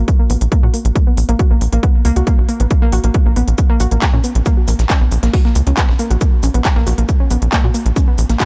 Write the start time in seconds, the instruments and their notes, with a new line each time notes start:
0.08 kick, closed hi-hat
0.19 synth arpeggio sound A#3
0.30 analog synth bass A#1, synth arpeggio sound B3, open hi-hat
0.41 analog synth bass A#1, closed hi-hat
0.52 synth arpeggio sound A#3, kick, closed hi-hat
0.63 analog synth bass A#2, synth arpeggio sound F#4
0.74 synth arpeggio sound A#3, open hi-hat
0.85 analog synth bass A#1, closed hi-hat
0.95 synth arpeggio sound A#3, kick, closed hi-hat
1.07 synth arpeggio sound B3
1.17 analog synth bass A#1, open hi-hat
1.29 analog synth bass A#1, synth arpeggio sound A#3, closed hi-hat
1.39 synth arpeggio sound F#4, kick, closed hi-hat
1.51 analog synth bass A#1, synth arpeggio sound A#3
1.61 analog synth bass A#1, open hi-hat
1.73 analog synth bass A#1, synth arpeggio sound A#3, closed hi-hat
1.83 synth arpeggio sound B3, kick, closed hi-hat
2.05 analog synth bass C#2, synth arpeggio sound A#3, open hi-hat
2.16 analog synth bass C#2, synth arpeggio sound F#4, closed hi-hat
2.27 synth arpeggio sound A#3, kick, closed hi-hat
2.38 analog synth bass A#1
2.49 synth arpeggio sound A#3, open hi-hat
2.60 analog synth bass A#1, synth arpeggio sound B3, closed hi-hat
2.71 kick, closed hi-hat
2.82 synth arpeggio sound A#3
2.92 analog synth bass A#1, synth arpeggio sound F#4, open hi-hat
3.04 analog synth bass A#1, synth arpeggio sound A#3, closed hi-hat
3.14 kick, closed hi-hat
3.26 analog synth bass A#1, synth arpeggio sound A#3
3.36 analog synth bass A#1, synth arpeggio sound B3, open hi-hat
3.48 analog synth bass A#1, closed hi-hat
3.58 kick, closed hi-hat, shaker
3.70 synth arpeggio sound A#3
3.80 analog synth bass A#1, synth arpeggio sound F#4, open hi-hat, shaker
3.91 analog synth bass A#1, synth arpeggio sound A#3, closed hi-hat
4.02 kick, snare, clap, closed hi-hat, shaker
4.13 analog synth bass A#2, synth arpeggio sound C#4
4.24 synth arpeggio sound B3, open hi-hat, shaker
4.35 analog synth bass A#1, closed hi-hat
4.46 synth arpeggio sound A#3, kick, closed hi-hat, shaker
4.57 synth arpeggio sound F#4
4.68 analog synth bass A#1, synth arpeggio sound A#3, open hi-hat, shaker
4.79 analog synth bass A#1, snare, closed hi-hat
4.90 synth arpeggio sound C#4, kick, snare, clap, closed hi-hat, shaker
5.01 analog synth bass A#1, synth arpeggio sound B3
5.12 analog synth bass A#1, open hi-hat, shaker
5.23 analog synth bass A#1, synth arpeggio sound A#3, snare, closed hi-hat
5.33 synth arpeggio sound F#4, kick, closed hi-hat, open hi-hat
5.45 synth arpeggio sound A#3, snare
5.55 analog synth bass C#2, open hi-hat, shaker
5.67 analog synth bass C#2, synth arpeggio sound C#4, closed hi-hat
5.77 synth arpeggio sound B3, kick, snare, clap, closed hi-hat, shaker
5.89 analog synth bass A#1, snare
5.99 synth arpeggio sound A#3, open hi-hat, shaker
6.11 analog synth bass A#1, synth arpeggio sound F#4, closed hi-hat
6.21 synth arpeggio sound A#3, kick, closed hi-hat, shaker
6.43 analog synth bass A#1, synth arpeggio sound C#4, open hi-hat, shaker
6.54 analog synth bass A#1, synth arpeggio sound B3, closed hi-hat
6.65 kick, snare, clap, closed hi-hat, shaker
6.76 analog synth bass A#1, synth arpeggio sound A#3, snare
6.87 analog synth bass A#1, synth arpeggio sound F#4, open hi-hat, shaker
6.98 analog synth bass A#1, synth arpeggio sound A#3, closed hi-hat
7.09 kick, closed hi-hat, shaker
7.20 synth arpeggio sound C#4
7.30 analog synth bass A#1, synth arpeggio sound B3, open hi-hat, shaker
7.42 analog synth bass A#1, closed hi-hat
7.52 synth arpeggio sound A#3, kick, snare, clap, closed hi-hat, shaker
7.64 analog synth bass A#2, synth arpeggio sound F#4
7.74 synth arpeggio sound A#3, open hi-hat, shaker
7.86 analog synth bass A#1, closed hi-hat
7.96 synth arpeggio sound C#4, kick, closed hi-hat, shaker
8.08 synth arpeggio sound B3
8.18 analog synth bass A#1, open hi-hat, shaker
8.29 analog synth bass A#1, synth arpeggio sound A#3, snare, closed hi-hat
8.40 synth arpeggio sound F#4, kick, snare, clap, closed hi-hat, shaker